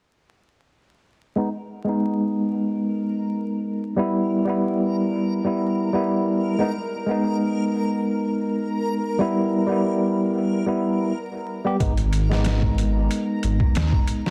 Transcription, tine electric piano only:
1.36 G#3 B3 D#4
1.84 G#3 B3
1.89 D#4
3.97 G3 B3 E4
4.45 G3 B3
4.50 E4
5.44 G3 B3 E4
5.93 G3 B3 E4
6.59 G#3 B3 D#4
7.06 G#3 B3
7.11 D#4
9.19 G3 B3 E4
9.67 G3 B3
9.72 E4
10.66 G3 B3 E4
11.64 G3 B3 G4
11.80 G#3 B3 D#4
12.29 G#3 B3
12.34 D#4

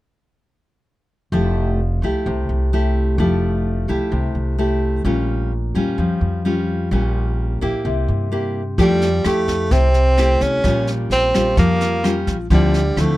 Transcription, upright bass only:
1.32 F1
2.02 C2
2.26 C2
2.49 C2
3.18 F1
3.88 C2
4.12 C2
4.35 C2
5.05 A#1
5.75 F2
5.98 F2
6.21 F2
6.91 A#1
7.62 A#1
7.85 C2
8.08 G2
8.78 F2
9.25 F2
9.71 C2
10.41 C2
10.64 A#1
11.10 A#1
11.57 F2
12.27 A#1
12.50 D2
12.96 D2

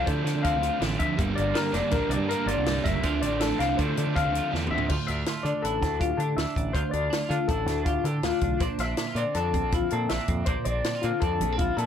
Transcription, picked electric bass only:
0.08 D3
0.25 D3
0.36 D3
0.54 D2
0.81 A1
1.19 G1
1.38 G1
1.73 F1
1.93 A#1
2.09 C2
2.18 G2
2.46 G1
2.57 C2
2.86 G1
2.94 C#2
3.04 D2
3.23 A1
3.59 C2
3.79 D3
3.98 D3
4.07 D3
4.25 D2
4.54 E2
4.71 D2
4.90 D2
5.09 D2
5.45 D3
5.64 A1
5.82 D2
6.18 D3
6.37 D2
6.56 A1
6.75 D2
6.93 D2
7.30 D3
7.49 A1
7.66 D2
8.04 D3
8.23 D2
8.42 B1
8.60 A#1
8.78 A#1
9.15 A#2
9.35 F2
9.54 A#1
9.93 A#2
10.11 A#1
10.28 F2
10.48 A#1
10.66 A#1
11.04 A#2
11.22 F2
11.40 A#1
11.77 A#2

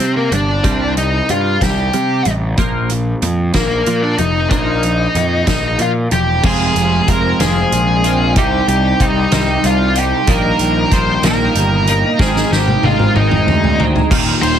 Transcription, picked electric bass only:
0.00 C3
0.31 G1
0.64 C2
1.29 G2
1.61 C2
1.93 C3
2.26 A1
2.58 A#1
3.22 F2
3.54 A#1
3.86 A#2
4.18 F1
4.51 A#1
5.14 F2
5.47 A#1
5.79 A#2
6.11 E1
6.44 F1
6.75 F1
7.08 F1
7.39 F1
7.72 A#1
8.36 C2
8.68 C2
9.00 C2
9.32 C2
9.63 C2
10.27 A#1
10.59 A#1
10.91 A#1
11.22 A#1
11.55 G1
12.19 G#1
12.51 G#1
12.83 G#1
13.14 G#1
13.46 D2
14.11 D#1
14.42 D#1

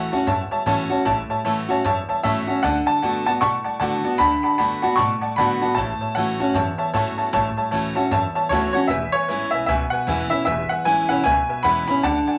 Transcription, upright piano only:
Already playing: F#5
2.23 E5
2.63 F#5
2.87 A5
3.26 A5
3.41 C#6
3.80 A5
4.18 B5
4.43 B5
4.58 B5
4.96 C#6
5.36 B5
5.75 A5
6.15 F#5
8.49 C#5
8.73 C#5
8.87 E5
9.12 C#5
9.51 E5
9.66 E5
9.90 F#5
10.30 E5
10.45 E5
10.69 F#5
10.85 G#5
11.09 F#5
11.24 G#5
11.63 B5
11.88 B5
12.03 A5

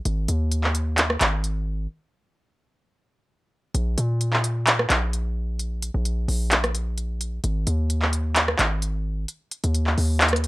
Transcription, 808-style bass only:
0.05 G#1
0.28 D#2
1.21 G#1
3.75 A#1
3.98 A#2
4.90 A#1
5.94 A#1
6.28 A#1
7.44 G#1
7.67 D#2
8.59 G#1
9.64 D#2
9.98 D#2

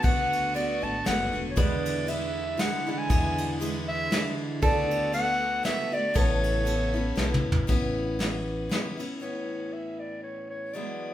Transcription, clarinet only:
0.04 F#5
0.55 D5
0.83 A5
1.07 F#5
1.51 C#5
1.60 D5
2.09 E5
2.60 F#5
2.92 F#5
2.98 G#5
3.88 E5
4.63 D5
5.14 F#5
5.65 E5
5.93 D5
6.17 C#5
9.21 C#5
9.73 E5
10.00 D5
10.23 C#5
10.50 C#5
10.73 D5

